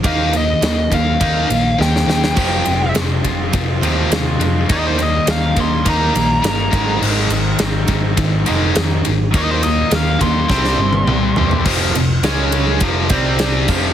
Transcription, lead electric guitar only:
X:1
M:4/4
L:1/16
Q:1/4=103
K:Fm
V:1 name="Lead electric guitar"
f2 e4 f6 g4- | g4 z12 | e c e2 f2 c'2 b8 | z16 |
e c e2 f2 c'2 c'8 | z16 |]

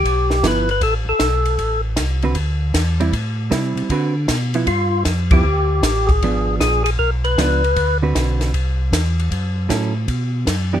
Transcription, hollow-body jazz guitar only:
X:1
M:4/4
L:1/8
Q:"Swing" 1/4=156
K:G
V:1 name="Hollow-body jazz guitar"
z2 [=F,B,E] z4 z | z3 [D,CFB] z3 [G,CE] | z2 [G,CE]2 [D,CFB] z2 [=F,B,E] | z3 [=F,B,E] z4 |
[^E,B,D]3 z3 [E,B,D] z | z [D,CFB]3 z4 | z2 [F,^CEA] z4 [E,B,DG] |]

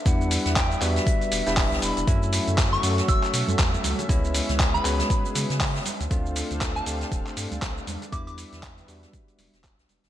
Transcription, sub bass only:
X:1
M:4/4
L:1/16
Q:"Swing 16ths" 1/4=119
K:Emix
V:1 name="Sub bass" clef=bass
E,,2 z E,,2 z E,, z3 E,,, E,,,2 B,,, E,,, E,,, | F,,2 z F,,2 z F,, z F,,, z B,, F,, E,, z C,, z | C,,2 z C,,2 z C,, z3 C, C,2 z2 D,, | D,,2 z D,,2 z D,, z D,,, z =G,, D,, =C,, z E,, z |
E,,2 z E,,2 z E,, z3 E,,, E,,,2 B,,, E,,, E,,, |]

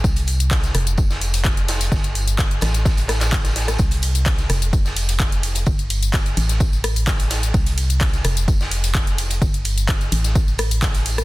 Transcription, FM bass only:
X:1
M:4/4
L:1/8
Q:1/4=128
K:Am
V:1 name="FM bass" clef=bass
C,,3 F,,,4- F,,, | G,,,3 A,,,4- A,,, | C,,3 F,,,4- F,,, | G,,,3 A,,,4- A,,, |
C,,3 F,,,4- F,,, | G,,,3 A,,,4- A,,, |]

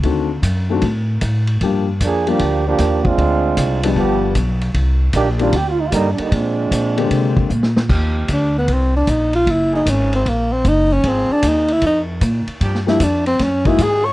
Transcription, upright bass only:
X:1
M:4/4
L:1/8
Q:"Swing" 1/4=153
K:Eb
V:1 name="Upright bass" clef=bass
D,,2 ^F,,2 =A,,2 A,,2 | G,,2 F,,2 D,,2 E,,2 | D,,2 C,,2 G,,,2 =B,,,2 | C,,2 B,,,2 D,,2 G,, z |
B,,2 B,,2 C,2 B,,2 | E,,2 D,,2 C,,2 B,,,2 | _G,,,2 A,,,2 B,,,2 G,,,2 | A,,, z E,,2 F,,2 B,, z |
G,,2 F,,2 _G,,2 A,,2 |]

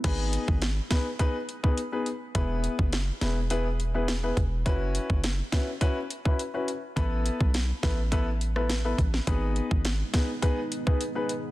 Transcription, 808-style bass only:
X:1
M:4/4
L:1/16
Q:1/4=104
K:G#phr
V:1 name="808-style bass" clef=bass
G,,,3 G,,,3 z8 z2 | E,,,3 F,,,3 E,,,8 E,,,2 | F,,,3 F,,,3 z8 z2 | A,,,3 B,,,3 A,,,8 A,,,2 |
G,,,3 G,,,3 z8 z2 |]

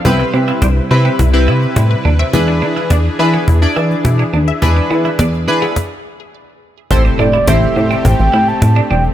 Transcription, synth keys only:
X:1
M:4/4
L:1/16
Q:1/4=105
K:Am
V:1 name="Synth keys"
[CEGB]4 z2 [CEGB]2 z [CEGB]4 z3 | [DE^GB]4 z2 [DEGB]2 z [DEGd]4 z3 | [DE^GB]4 z2 [DEGB]2 z8 | [CEGAc]3 z [CEGAc]4- [CEGAc] z6 z |]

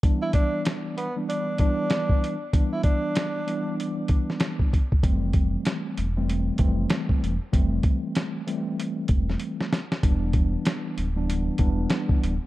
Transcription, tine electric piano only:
X:1
M:4/4
L:1/16
Q:"Swing 16ths" 1/4=96
K:Ephr
V:1 name="Tine electric piano" clef=bass
[E,G,B,D]6 z [E,G,B,D]3 [E,G,B,D]4- [E,G,B,D] z | [E,G,B,D]6 [E,G,B,D]8 z2 | [E,G,A,C]6 z [E,G,A,C]3 [E,G,A,C]4- [E,G,A,C] z | [E,G,A,C]6 [E,G,A,C]8 z2 |
[E,G,B,D]6 z [E,G,B,D]3 [E,G,B,D]4- [E,G,B,D] z |]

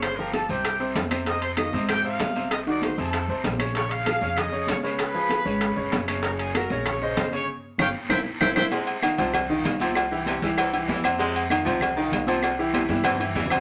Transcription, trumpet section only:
X:1
M:4/4
L:1/8
Q:1/4=194
K:Fm
V:1 name="Trumpet section"
[cc'] [Bb] [=A=a] [Gg]3 z2 | [ee'] [cc'] [ee']2 [Gg] f3 | [ee'] [=d=d'] [cc'] [=A=a]3 z2 | [dd'] f3 [ee']2 [dd'] [=B=b]- |
[=B=b]6- [Bb] z | [Bb] [Aa] [Bb]2 [dd'] [cc']2 [dd'] | z2 [dfg] z [c=eg] z [ceg] [ceg] | z8 |
z8 | z8 | z8 |]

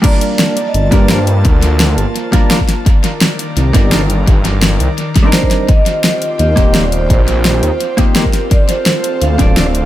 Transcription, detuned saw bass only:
X:1
M:4/4
L:1/8
Q:1/4=170
K:Gm
V:1 name="Detuned saw bass" clef=bass
z4 G,,, G,,3 | D,,3 G,,, z4 | z4 C,, G,,,3 | G,,,3 C,, z4 |
z4 E,, E,,,3 | B,,,3 E,, z4 | z4 D,, D,,,3 |]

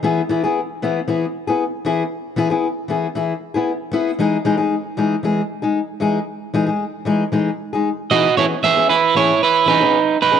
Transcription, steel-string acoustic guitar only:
X:1
M:4/4
L:1/16
Q:1/4=115
K:E
V:1 name="Steel-string acoustic guitar"
[E,B,EG] z [E,B,EG] [B,EG] z2 [E,B,EG] z [E,B,EG] z2 [B,EG] z2 [E,B,EG] z | z2 [E,B,EG] [B,EG] z2 [E,B,EG] z [E,EG] z2 [B,EG] z2 [B,EG] z | [E,G,DG] z [E,G,DG] [G,DG] z2 [E,G,DG] z [E,G,G] z2 [G,DG] z2 [E,G,DG] z | z2 [E,G,DG] [G,G] z2 [E,G,DG] z [E,G,DG] z2 [G,DG] z2 [E,DG] z |
[E,B,CG] z [E,B,CG] [B,CG] z2 [E,B,CG] z3 [E,B,CG] [B,CG] z3 [B,CG] |]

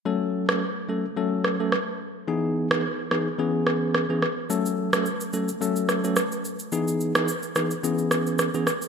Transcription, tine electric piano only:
X:1
M:4/4
L:1/16
Q:"Swing 16ths" 1/4=108
K:F#dor
V:1 name="Tine electric piano"
[F,A,CA]3 [F,A,CA] z2 [F,A,CA] z [F,A,CA]3 [F,A,CA] z4 | [E,B,DG]3 [E,B,DG] z2 [E,B,DG] z [E,B,CG]4- [E,B,CG] [E,B,CG] z2 | [F,A,CA]3 [F,A,CA] z2 [F,A,CA] z [F,A,CA]3 [F,A,CA] z4 | [E,B,DG]3 [E,B,DG] z2 [E,B,DG] z [E,B,CG]4- [E,B,CG] [E,B,CG] z2 |]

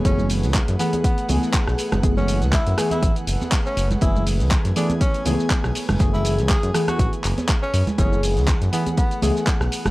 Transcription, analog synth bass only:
X:1
M:4/4
L:1/16
Q:"Swing 16ths" 1/4=121
K:F#m
V:1 name="Analog synth bass" clef=bass
F,,,3 C,, z F,, z4 C,, z2 B,,, z F,,, | z3 C,, z F,, z2 A,,, z F,,, z3 F,,, z | F,,,3 C,, z F,, z4 C,, z2 B,,, z F,,, | F,,,3 C,, z F,, z2 A,,, z F,,, z3 F,, z |
F,,,3 C,, z F,, z4 C,, z2 B,,, z F,,, |]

